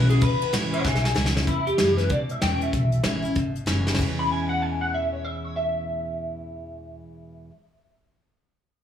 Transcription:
Already playing: upright bass B1, steel-string acoustic guitar B2
0.09 steel-string acoustic guitar C#4 E4, clean electric guitar G#4, ride
0.21 upright bass G#1, steel-string acoustic guitar E2, clean electric guitar B4, kick, ride
0.41 ride
0.53 upright bass A1, steel-string acoustic guitar E3 G#3 C#4 E4, snare, ride
0.73 clean electric guitar C#5 F#5, ride
0.84 upright bass B1, steel-string acoustic guitar B2, clean electric guitar E5 G#5, kick, snare
0.95 snare
1.04 clean electric guitar G#5, snare
1.15 upright bass C#2, steel-string acoustic guitar E3 G#3 C#4 E4, snare
1.26 snare
1.35 steel-string acoustic guitar C#4 E4, snare
1.47 upright bass E2, steel-string acoustic guitar E2, clean electric guitar E4, kick, closed hi-hat
1.67 clean electric guitar G4, closed hi-hat
1.78 upright bass F#2, steel-string acoustic guitar E3 G#3 C#4 E4, snare, closed hi-hat
1.97 clean electric guitar B4, snare, closed hi-hat
2.10 upright bass G#2, steel-string acoustic guitar B2, clean electric guitar D5, kick, closed hi-hat
2.29 clean electric guitar E5, closed hi-hat
2.41 upright bass E2, steel-string acoustic guitar E3 G#3 C#4 E4, clean electric guitar G5, snare, closed hi-hat
2.61 clean electric guitar E5, closed hi-hat
2.73 upright bass B1, steel-string acoustic guitar E2, kick, closed hi-hat
2.92 closed hi-hat
3.04 upright bass A1, steel-string acoustic guitar E3 G#3 C#4 E4, snare, closed hi-hat
3.22 steel-string acoustic guitar C#4 E4, closed hi-hat
3.36 upright bass G#1, steel-string acoustic guitar B2, kick, closed hi-hat
3.55 closed hi-hat
3.66 upright bass F#1, steel-string acoustic guitar E3 G#3 C#4 E4, snare, closed hi-hat
3.87 steel-string acoustic guitar C#4 E4, snare
3.94 steel-string acoustic guitar E2, snare, crash
3.99 upright bass E2, steel-string acoustic guitar B2 E3 G#3 C#4 E4, kick
4.19 clean electric guitar B5
4.32 clean electric guitar G#5
4.49 clean electric guitar F#5
4.62 clean electric guitar G#5
4.81 clean electric guitar F#5
4.94 clean electric guitar E5
5.13 clean electric guitar C#5
5.25 clean electric guitar E5
5.44 clean electric guitar C#5
5.56 clean electric guitar E5

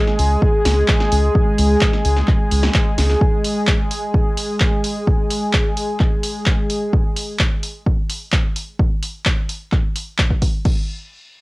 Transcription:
Already playing: analog synth pad G#3 G#4
0.07 snare
0.19 analog synth bass C#2, open hi-hat
0.42 kick
0.65 analog synth bass C#2, snare, open hi-hat
0.88 kick, clap
1.00 snare
1.12 analog synth bass C#2, open hi-hat
1.35 kick
1.58 analog synth bass C#2, open hi-hat
1.81 kick, clap
1.93 snare
2.05 analog synth bass C#2, open hi-hat
2.17 snare
2.28 kick, clap
2.51 analog synth bass C#2, open hi-hat
2.63 snare
2.74 kick, clap
2.98 analog synth bass C#2, snare, open hi-hat
3.10 snare
3.21 kick
3.44 open hi-hat
3.67 kick, clap
3.91 open hi-hat
4.14 kick
4.37 open hi-hat
4.60 kick, clap
4.84 open hi-hat
5.07 kick
5.30 open hi-hat
5.53 kick, clap
5.77 open hi-hat
6.00 kick, clap
6.23 open hi-hat
6.46 kick, clap
6.70 open hi-hat
6.93 kick
7.16 open hi-hat
7.39 kick, clap
7.63 open hi-hat
7.86 kick
8.10 open hi-hat
8.32 kick, clap
8.56 open hi-hat
8.79 kick
9.03 open hi-hat
9.25 kick, clap
9.49 open hi-hat
9.72 kick, clap
9.96 open hi-hat
10.18 kick, clap
10.30 kick
10.42 kick, open hi-hat
10.65 kick, crash

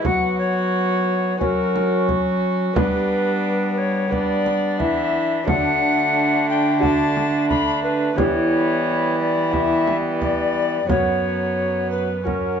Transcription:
0.02 lute F#3 B3 F#4, cello F#3, bassoon B3, recorder F#5, frame drum
0.06 viola F#4
0.38 recorder C#5
1.37 lute F#3 C#4 F#4, cello F#3, bassoon C#4, viola F#4, recorder B4, frame drum
1.44 recorder A#4
1.76 frame drum
2.09 frame drum
2.73 cello G3, lute G3 B3 D4 B4, bassoon B3, viola D4, recorder B4, frame drum
3.78 recorder C#5
4.08 lute B3 D4 B4, bassoon B3, viola D4, recorder D5
4.12 frame drum
4.46 frame drum
4.79 cello E3, lute E3, recorder E5, frame drum
5.44 lute D3 F#3 D4 A4, bassoon A3, viola D4, recorder F#5
5.48 cello D3, frame drum
6.49 recorder G5
6.79 bassoon A3, lute D4 F#4 A4, recorder A5
6.83 viola D4, frame drum
7.17 frame drum
7.49 recorder B5, frame drum
7.83 recorder B4
8.14 cello E3, lute E3 B3 E4 G4, viola B3, recorder C#5, frame drum
8.19 bassoon G3
9.20 recorder D5
9.50 bassoon G3, lute B3 E4 G4, viola B3, recorder E5, frame drum
9.88 frame drum
10.21 recorder D5, frame drum
10.86 cello F#2, lute F#2 B3 C#4 F#4, bassoon F#3, viola B3, recorder C#5, frame drum
11.91 recorder B4
12.24 bassoon F#3, lute C#4 F#4, viola C#4, recorder A#4, frame drum

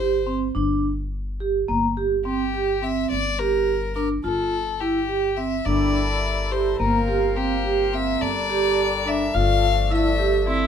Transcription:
Already playing: upright bass G1, violin C5
0.00 vibraphone G4
0.27 vibraphone C4
0.55 upright bass G1, vibraphone D4
1.40 vibraphone G4
1.68 upright bass G1, vibraphone A#3
1.97 vibraphone G4
2.25 vibraphone C4, violin G4
2.54 vibraphone G4
2.82 vibraphone C4, violin E5
3.10 upright bass G1, violin D5
3.39 vibraphone G4, violin A#4
3.95 vibraphone D4, violin A#4
4.24 upright bass G1, vibraphone F4, violin A4
4.80 vibraphone E4, violin G4
5.09 vibraphone G4
5.37 vibraphone C4, violin E5
5.65 upright bass G1, harmonium G3 E4 A4 A#4, vibraphone D4, violin D5
6.51 vibraphone G4, violin C5
6.78 upright bass G1, harmonium A#3 C4 F4, vibraphone A#3, violin A#4
7.08 vibraphone G4
7.36 vibraphone C4, violin G4
7.64 vibraphone G4
7.93 vibraphone C4, violin E5
8.20 upright bass G1, harmonium G3 D4 A4 A#4, violin D5
8.49 vibraphone G4
9.06 vibraphone D4, violin E5
9.33 upright bass G1, harmonium F3 A3, vibraphone F4, violin F5
9.91 vibraphone E4, violin E5
10.19 vibraphone G4
10.47 vibraphone C4, viola E4

